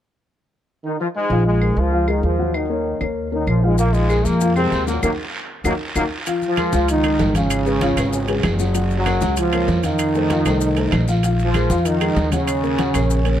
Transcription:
0.85 D#3 D#4
1.00 F3 F4
1.16 G#2 G#3
1.30 A#1 F3 F4 F5
1.46 G#2 G#3
1.61 G#3 G#4 A#4, claves
1.76 C#2 F3 F4
1.92 F3 F4 F5
2.08 D#3 G#3 D#4 G#4 A#4, claves
2.23 D#2 F3 F4
2.39 F#3 F#4 F#5
2.54 D#3 D#4, claves
2.70 A#3 A#4 C#5
3.01 D#2 A#3 A#4 C#5, claves
3.32 D#3 A#3 D#4 A#4 C#5
3.47 A#1 F3 F4, claves
3.63 G#2 F3 G#3 F4 F5
3.78 A#2 F3 A#3 F4 F5, long guiro, maracas
3.94 G#2 G#3, maracas
4.10 G#3 G#4 A#4, short guiro, claves, maracas
4.25 F2 A#2 A#3, short guiro, maracas
4.41 F3 F4 F5, long guiro, maracas
4.56 C3 G#3 C4 G#4 A#4, claves, maracas
4.72 D#2, short guiro, maracas
4.87 A#2 F#3 A#3 F#4 F#5, short guiro, maracas
5.03 D#2 D#3 F#3 A#3 D#4 F#4 A#4, long guiro, claves, maracas
5.64 D#2 D#3 F#3 A#3 D#4 F#4 A#4, long guiro, claves, maracas
5.95 D#2 D#3 F#3 A#3 D#4 F#4 A#4, long guiro, claves, maracas
6.26 F3 F4 F5, high conga, high timbale, long guiro, maracas
6.42 high conga, maracas
6.49 F3 F4
6.57 G#3 A#4, high conga, high timbale, low timbale, short guiro, claves, maracas
6.73 C#2 F3 F4 F5, high conga, short guiro, maracas
6.88 D#3 D#4, high conga, high timbale, long guiro, maracas
7.04 G#3 G#4 A#4, high conga, high timbale, claves, maracas
7.19 G#1, high conga, low timbale, short guiro, maracas
7.35 C#3 F3 C#4 F4 F5, high conga, high timbale, short guiro, maracas
7.50 high timbale, long guiro, claves, maracas
7.66 G#3 G#4 B4, high conga, maracas
7.81 F3 F4 F5, high conga, high timbale, low timbale, short guiro, maracas
7.97 G#1 G#3 G#4 B4, high timbale, short guiro, claves, maracas
8.13 high conga, long guiro, maracas
8.28 G#3 G#4 B4, high conga, high timbale, maracas
8.43 F#1, high conga, high timbale, low timbale, short guiro, claves, maracas
8.59 F#3 F#4 F#5, high conga, short guiro, maracas
8.75 F#3 F#4 F#5, high conga, high timbale, long guiro, maracas
8.90 high conga, maracas
8.97 F#2 F#3
9.06 A#3 A#4 C#5, high conga, high timbale, low timbale, short guiro, claves, maracas
9.21 C#2 F#3 F#4 F#5, high conga, short guiro, maracas
9.37 F3 F4, high conga, high timbale, long guiro, maracas
9.52 A#3 A#4 C#5, high conga, high timbale, claves, maracas
9.68 F2, high conga, low timbale, short guiro, maracas
9.83 D#3 F3 D#4 F4 F5, high conga, high timbale, short guiro, maracas
9.99 high conga, high timbale, long guiro, claves, maracas
10.15 A3 A4 C5, high conga, maracas
10.30 F3 F4 F5, high conga, high timbale, low timbale, short guiro, maracas
10.45 C2 A3 A4 C5, high timbale, short guiro, claves, maracas
10.61 high conga, long guiro, maracas
10.76 A3 A4 C5, high conga, high timbale, maracas
10.92 A#1, high conga, high timbale, low timbale, short guiro, claves, maracas
11.08 F3 F4 F5, high conga, short guiro, maracas
11.23 F3 F4 F5, high conga, high timbale, long guiro, maracas
11.39 high conga, maracas
11.45 F3 F4
11.54 G#3 G#4 A#4, high conga, high timbale, low timbale, short guiro, claves, maracas
11.70 F2 F3 F4 F5, high conga, short guiro, maracas
11.85 D#3 D#4, high conga, high timbale, long guiro, maracas
12.01 G#3 G#4 A#4, high conga, high timbale, claves, maracas
12.16 D#2, high conga, low timbale, short guiro, maracas
12.32 C#3 F#3 C#4 F#4 F#5, high conga, high timbale, short guiro, maracas
12.47 high conga, high timbale, long guiro, claves, maracas
12.63 A#3 A#4 C#5, high conga, maracas
12.78 F#3 F#4 F#5, high conga, high timbale, low timbale, short guiro, maracas
12.94 A#1 A#3 A#4 C#5, high timbale, short guiro, claves, maracas
13.10 high conga, long guiro, maracas
13.25 A#3 A#4 C#5, high conga, high timbale, maracas

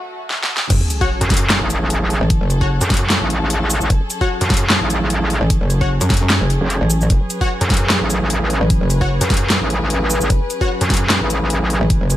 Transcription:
Already playing: F#2 F#3 A3 F#4
0.30 snare
0.43 snare
0.57 snare
0.70 F#1 F#3 C#4 G#4 A4, kick, closed hi-hat, crash, sub drop
0.90 closed hi-hat, shaker
1.01 F#4 C#5 F#5, kick
1.21 F#2, closed hi-hat
1.30 kick, snare, closed hi-hat
1.34 closed hi-hat
1.37 closed hi-hat
1.50 snare, clap, closed hi-hat
1.61 A1
1.70 closed hi-hat, shaker
1.90 closed hi-hat
2.10 open hi-hat
2.21 A1
2.30 kick, closed hi-hat
2.41 F#1
2.50 closed hi-hat, shaker
2.61 F#4 C#5 F#5, kick
2.81 F#2, closed hi-hat, shaker
2.90 kick, snare, closed hi-hat
2.94 closed hi-hat
2.97 closed hi-hat
3.10 snare, clap, closed hi-hat
3.21 A1
3.30 closed hi-hat
3.50 closed hi-hat
3.70 open hi-hat, shaker
3.81 A1, shaker
3.90 F#1, kick, closed hi-hat
4.10 closed hi-hat, shaker
4.21 F#4 C#5 F#5, kick
4.41 F#2, closed hi-hat
4.50 kick, snare, closed hi-hat
4.54 closed hi-hat
4.57 closed hi-hat
4.70 snare, clap, closed hi-hat
4.81 A1
4.90 closed hi-hat, shaker
5.10 closed hi-hat
5.30 open hi-hat
5.41 A1
5.50 kick, closed hi-hat
5.61 F#1
5.70 closed hi-hat, shaker
5.81 F#4 C#5 F#5, kick
6.01 F#2, closed hi-hat, shaker
6.10 kick, snare, closed hi-hat
6.14 closed hi-hat
6.17 closed hi-hat
6.30 snare, clap, closed hi-hat
6.41 F#1
6.50 closed hi-hat
6.61 F#1
6.70 closed hi-hat
6.81 A1
6.90 open hi-hat, shaker
7.01 shaker
7.10 F#1 B4, kick, closed hi-hat
7.30 closed hi-hat, shaker
7.41 F#4 C#5 F#5, kick
7.61 F#2, closed hi-hat
7.70 kick, snare, closed hi-hat
7.74 closed hi-hat
7.77 closed hi-hat
7.90 snare, clap, closed hi-hat
8.01 A1
8.10 closed hi-hat, shaker
8.30 closed hi-hat
8.50 open hi-hat
8.61 A1
8.70 kick, closed hi-hat
8.81 F#1
8.90 closed hi-hat, shaker
9.01 F#4 C#5 F#5, kick
9.21 F#2, closed hi-hat, shaker
9.30 kick, snare, closed hi-hat
9.34 closed hi-hat
9.37 closed hi-hat
9.50 snare, clap, closed hi-hat
9.61 A1
9.70 closed hi-hat
9.90 closed hi-hat
10.10 open hi-hat, shaker
10.21 A1, shaker
10.30 F#1, kick, closed hi-hat
10.50 closed hi-hat, shaker
10.61 F#4 C#5 F#5, kick
10.81 F#2, closed hi-hat
10.90 kick, snare, closed hi-hat
10.94 closed hi-hat
10.97 closed hi-hat
11.10 snare, clap, closed hi-hat
11.21 A1
11.30 closed hi-hat, shaker
11.50 closed hi-hat
11.70 open hi-hat
11.81 A1
11.90 kick, closed hi-hat
12.01 F#1
12.10 closed hi-hat, shaker

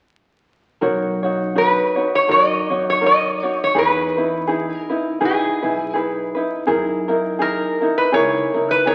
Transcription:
0.81 B1 D#4 F#4 A#4 C#5
1.23 D#4 F#4 C#5
1.55 D#4 F#4 B4 C#5
1.96 D#4 F#4 C#5
2.15 C#5
2.28 F#2 D#4 F#4 A#4 C#5 D#5
2.69 F#2 D#4 F#4 C#5
2.90 C#5
3.01 D#4 F#4 A#4 C#5
3.06 D#5
3.43 D#4 F#4 C#5
3.64 C#5
3.75 E2 D#4 E4 G#4 B4
4.17 D#4 E4 B4
4.47 D#4 E4 G#4 B4
4.75 A#4
4.89 D#4 E4 B4
5.21 B1 D#4 E4 G#4 B4
5.25 G#4
5.62 B1 D#4 E4 B4
5.94 D#4 E4 G#4 B4
6.35 D#4 E4 B4
6.67 F#2 D#4 E4 G#4 A#4
7.08 D#4 E4 A#4
7.39 D#4 E4 G#4 A#4
7.80 D#4 E4 A#4
7.98 B4
8.12 C#2 D#4 E4 G#4 A#4 C#5
8.54 C#2 D#4 E4 A#4
8.71 B4
8.86 D#4 E4 G#4 A#4 C#5

